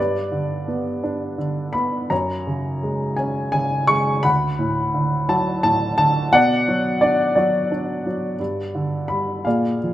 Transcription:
Already playing: G2 D5
0.00 B4
0.32 D3
0.68 B3
1.04 D4
1.38 D3
1.73 B3 B5
2.10 F#2 C#5 A#5
2.47 C#3
2.83 G#3
3.17 C#4 G#5
3.52 C#3 G#5
3.87 G#3 C#6
4.23 D2 F#5 B5
4.59 A2
4.94 D3
5.29 F#3 A5
5.63 A2 A5
5.98 D3 A5
6.33 B2 D5 F#5
6.68 F#3
7.01 D4 D5
7.35 F#3 F#4 D5
7.71 D4
8.06 F#3
8.39 G2
8.75 D3
9.08 G3 B5
9.45 A#2 G#4 D5 F5
9.83 F3

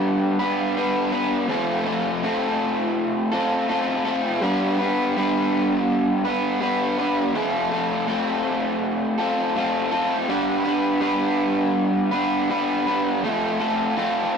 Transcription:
Already playing: G3 B3 D4 B4
0.39 B3 D4 B4
0.76 G3 B3 D4 B4
1.12 B3 D4 B4
1.48 F3 A3 C4 F4 A4
1.86 C4 F4 A4
2.23 A3 C4 F4 A4
3.32 C4 F4 A4
3.68 A3 C4 F4 A4
4.05 C4 F4 A4
4.41 G3 B3 D4 B4
4.79 B3 D4 B4
5.17 G3 B3 D4 B4
6.25 B3 D4 B4
6.61 G3 B3 D4 B4
6.99 B3 D4 B4
7.35 F3 A3 C4 F4 A4
7.71 C4 F4 A4
8.07 A3 C4 F4 A4
9.18 C4 F4 A4
9.56 A3 C4 F4 A4
9.91 C4 F4 A4
10.28 G3 B3 D4 B4
10.64 B3 D4 B4
11.01 G3 B3 D4 B4
12.12 B3 D4 B4
12.49 G3 B3 D4 B4
12.86 B3 D4 B4
13.23 F3 A3 C4 F4 A4
13.59 C4 F4 A4
13.96 A3 C4 F4 A4

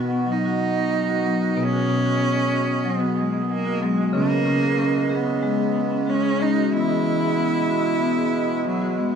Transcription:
Already playing: B2 D#3 B3 F#4
0.13 B3
0.27 F#3
0.31 D#4
0.45 F#4
0.77 B3
0.92 F#3
1.09 F#4
1.25 F#3 B3
1.42 F#4
1.57 B2 B3 G#4
1.63 C#4
1.73 F#4
1.89 B2 B3
2.05 F#4
2.20 B3
2.52 F#4
2.69 B3
2.85 F#3
2.90 B3
3.00 F#4
3.20 G#3
3.33 B3
3.42 B3
3.50 F#3 A#3
3.65 F#4
3.81 F#3 G#3 B3
3.98 F#4
4.11 C#3 E3 G#3 A#3 C#4
4.30 G#4
4.45 C#3 C#4
4.62 G#4
4.78 C#4
5.09 G#4
5.14 B3
5.25 C#4
5.43 G#3
5.58 G#4
5.92 C#4
6.07 G#3 C#4
6.23 G#4
6.39 G#3 C#4 D#4
6.56 F#4
6.71 B2 E3 B3 E4
6.89 G#4
7.04 E3 B3
7.22 G#4
7.37 B3
7.69 F#4
7.86 B3
8.00 B3
8.17 G#4
8.50 B3
8.65 F#3 B3
8.81 F#4
8.98 G#3 B3

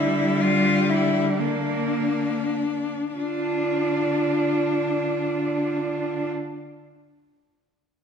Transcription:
Already playing: D3 G3 E4
0.41 F4
0.89 E4
1.39 A#3 D4
3.16 D3 D4 F4

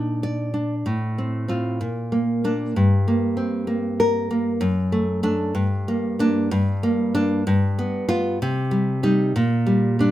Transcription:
Already playing: A#2 D4 D#4
0.23 D5
0.54 D4
0.86 A2
1.18 C4
1.48 C4 F4
1.81 A#2
2.12 A#3
2.44 A#3 D4
2.76 G2
3.08 A#3
3.37 C4
3.67 A#3
4.00 A#4
4.31 A#3
4.61 F#2
4.92 A3
5.23 A3 D4
5.55 G2
5.88 A#3
6.19 A#3 D4
6.51 G2
6.83 A#3
7.15 A#3 D4
7.47 G2
7.79 B3
8.09 B3 F4
8.42 C3
8.71 G3
9.03 G3 D#4
9.36 A#2
9.66 G3
9.99 G3 D4

